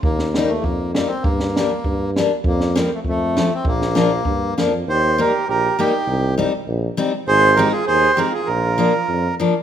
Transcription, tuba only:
\new Staff \with { instrumentName = "Tuba" } { \clef bass \time 2/4 \key bes \major \tempo 4 = 100 ees,4 f,4 | g,4 g,4 | f,4 f,4 | bes,,4 g,8 f,8 |
\key ees \major ees,4 bes,,8 r8 | c,4 bes,,8 r8 | aes,,4 ees,8 r8 | bes,,4 f,8 r8 | }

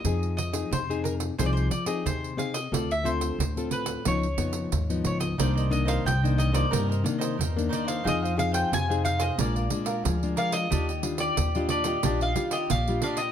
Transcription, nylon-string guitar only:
\new Staff \with { instrumentName = "Nylon-string guitar" } { \time 4/4 \key ees \major \tempo 4 = 90 << { <c' ees' aes'>8 r16 <c' ees' aes'>8 <c' ees' aes'>8. <c' ees' aes'>8 r16 <c' ees' aes'>8. <c' ees' aes'>16 r16 | <c' f' a'>16 r16 <c' f' a'>8 r16 <c' f' a'>8. <f ces' ees'>16 r16 <f ces' ees'>8 r16 <f ces' ees'>8. | <ees bes d'>8 <ees bes d'>8 r16 <ees bes d'>8 <ees bes d'>16 <ees bes d'>16 r16 <ees bes d'>8 r16 <ees bes d'>8. | <c' ees' aes'>8 <c' ees' aes'>8 r16 <c' ees' aes'>8. <aes d' f'>8 <aes d' f'>8. <aes d' f'>8. |
<g d' f'>16 r16 <g d' f'>8. <g d' f'>8 <g d' f'>16 <g d' f'>8 <g d' f'>8 r16 <g d' f'>8. | } \\ { f4 c4 f4 c4 | d4 a,4 des4 aes,4 | c4 g,4 c4 g,4 | f4 c4 bes,4 f4 |
ees4 bes,4 ees4 bes,4 | } >> }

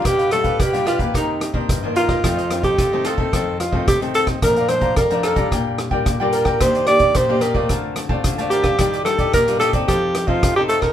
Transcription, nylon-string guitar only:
\new Staff \with { instrumentName = "Nylon-string guitar" } { \time 4/4 \key bes \major \tempo 4 = 110 << { <g d' f'>8 <g d' f'>8 r16 <g d' f'>8 <ees bes>4 <ees bes d'>8 <ees bes d'>8. | <ees a c'>16 r16 <ees a c'>8. <ees a c'>8 <ees a c'>16 <ees a c'>8 r16 <ees a c'>8 <ees a c'>8. | <f a d'>8 <f a d'>8 r16 <f a d'>8 <g d' f'>4 <g d' f'>8 <g d' f'>8. | <bes d' g'>8 <bes d' g'>8. <bes d' g'>8 <a c' f'>4 <a c' f'>8 <a c' f'>8. |
<g d' f'>16 r16 <g d' f'>8. <g d' f'>8 <c' ees' a'>4 <c' ees' a'>8 <c' ees' a'>8. | } \\ { b,4 b,4 c4 g,4 | f,4 c4 f,4 c4 | bes,4 f,4 bes,4 bes,4 | ees4 bes,4 d4 d4 |
ees4 bes,4 f4 c4 | } >> }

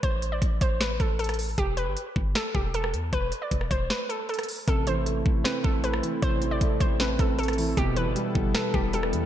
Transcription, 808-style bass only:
\new Staff \with { instrumentName = "808-style bass" } { \clef bass \time 4/4 \key a \minor \tempo 4 = 155 a,,4 a,,8 a,,4 a,,4. | e,,8. g,,16 r8 g,,8 r8 e,,4 e,8 | e,,8 r8 e,,8 e,,8 r2 | a,,4. a,,8 r8 a,,4 r8 |
a,,4 a,,8 a,,4 a,,4. | e,,8. g,,16 r8 g,,8 r8 e,,4 e,8 | }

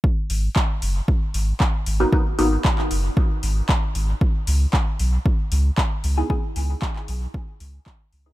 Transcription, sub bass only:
\new Staff \with { instrumentName = "Sub bass" } { \clef bass \time 4/4 \key gis \minor \tempo 4 = 115 r8 gis,,8 r8 fis,,8 r8 gis,,8 r8 gis,,8 | r8 gis,,8 r8 fis,,8 r8 gis,,8 r8 gis,,8 | r8 cis,8 r8 b,,8 r8 cis,8 r8 cis,8 | r8 cis,8 r8 b,,8 r8 cis,8 r8 cis,8 | }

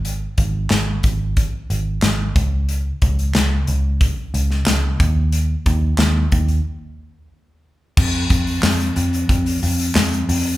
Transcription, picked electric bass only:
\new Staff \with { instrumentName = "Picked electric bass" } { \clef bass \time 4/4 \key f \minor \tempo 4 = 91 aes,,8 aes,,8 aes,,8 aes,,8. r16 aes,,8 aes,,8 des,8~ | des,8 des,8 des,8 des,8. r16 des,8 des,8 ees,8~ | ees,8 ees,8 ees,8 ees,8 r2 | f,8 f,8 f,8 f,8 f,8 f,8 f,8 f,8 | }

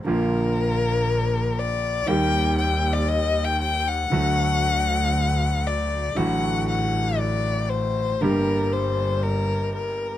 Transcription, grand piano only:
\new Staff \with { instrumentName = "Grand piano" } { \clef bass \time 4/4 \key d \phrygian \tempo 4 = 118 <bes,, bes, d f bes f'>1 | <ees, ees g bes g'>1 | <d, d fis a fis'>1 | <a,, a, d fis a fis'>1 |
<g,, g, d g bes g'>1 | }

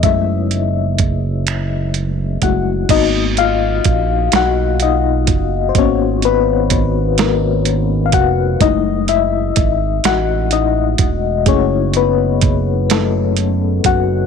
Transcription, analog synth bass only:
\new Staff \with { instrumentName = "Analog synth bass" } { \clef bass \time 6/8 \key aes \mixolydian \tempo 4. = 42 ges,,2~ ges,,8 ges,,8 | aes,,4 bes,,8 ces,4 ges,,8 | aes,,2~ aes,,8 f,,8 | ges,,4 aes,,8 a,,4 fes,,8 |
ges,,2~ ges,,8 ges,,8 | }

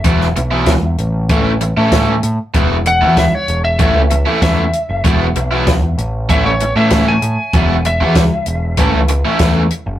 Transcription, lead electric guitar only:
\new Staff \with { instrumentName = "Lead electric guitar" } { \time 4/4 \key a \lydian \tempo 4 = 96 r1 | r8 fis''8 e''16 cis''8 e''4~ e''16 e''4 | r2 e''16 cis''8 e''8 gis''8.~ | gis''8 e''2 r4. | }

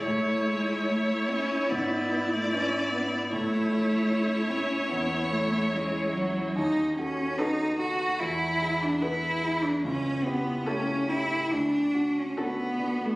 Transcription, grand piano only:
\new Staff \with { instrumentName = "Grand piano" } { \time 4/4 \key a \major \tempo 4 = 73 a,8 <e' cis''>8 <a e' cis''>8 <e' cis''>8 gis,8 <e' b'>8 <d' e' b'>8 <e' b'>8 | a,8 <e' cis''>8 <cis' e' cis''>8 <e' cis''>8 e,8 <e' cis''>8 <cis' e' cis''>8 <e' cis''>8 | dis,8 <fis' a'>8 <b fis' a'>8 <fis' a'>8 e,8 <e' gis'>8 <b e' gis'>8 <e' gis'>8 | cis,8 <e' g'>8 <a e' g'>8 <e' g'>8 d,8 <d' fis'>8 <a d' fis'>8 <d' fis'>8 | }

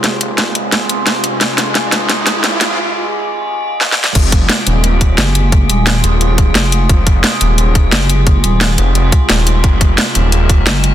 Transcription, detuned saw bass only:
\new Staff \with { instrumentName = "Detuned saw bass" } { \clef bass \time 4/4 \key f \phrygian \tempo 4 = 175 ges,,8 ees,,4 ees,,4. f,,4 | f,,4 r8 ees,,4. ges,,4 | r1 | f,,4 r8 ees,,4. r4 |
r4. ees,,4. r4 | f,,4 r8 ees,,4. r4 | r4. f,,4 r8 ees,,4 | f,,4 r8 ees,,4. r4 | }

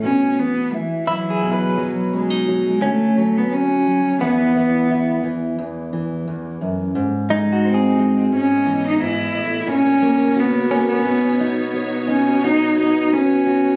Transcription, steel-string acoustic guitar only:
\new Staff \with { instrumentName = "Steel-string acoustic guitar" } { \clef bass \time 4/4 \key e \major \tempo 4 = 87 << { r4 e'4 r4 cis'16 dis'8. | r4 fis'4 <e b e' gis'>4 e'4 | r2. bis'4 | r2. fis'4 |
r4 b'4 fis'8 b'8 b'8 fis'8 | } \\ { b,8 e4 e8 b,8 fis4 fis8 | d8 fis4 fis8 e,8 e4 e8 | e,8 e8 e,8 fis,8 gis,8 gis4 gis8 | gis,8 e8 gis,8 a,8 ais,8 ais4 ais8 |
b,8 dis'4 dis'2~ dis'8 | } >> }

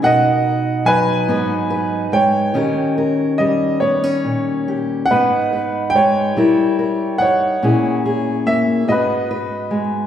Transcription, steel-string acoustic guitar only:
\new Staff \with { instrumentName = "Steel-string acoustic guitar" } { \time 6/8 \key gis \minor \tempo 4. = 48 << { <dis' fis' ais'>4. <b dis' b'>8 b'4 | <cis' g' ais'>8 ais'4 b16 cis'8. g'8 | <b dis' b'>8 b'4 <e' ais'>8 ais'4 | <cis' e' gis'>8 gis'4 <b fis' b'>8 b'4 | } \\ { b,4 fis8 gis,4 gis8 | dis4 g4 ais,4 | gis,4 gis8 g4 dis'8 | ais,4 ais8 gis,4 gis8 | } >> }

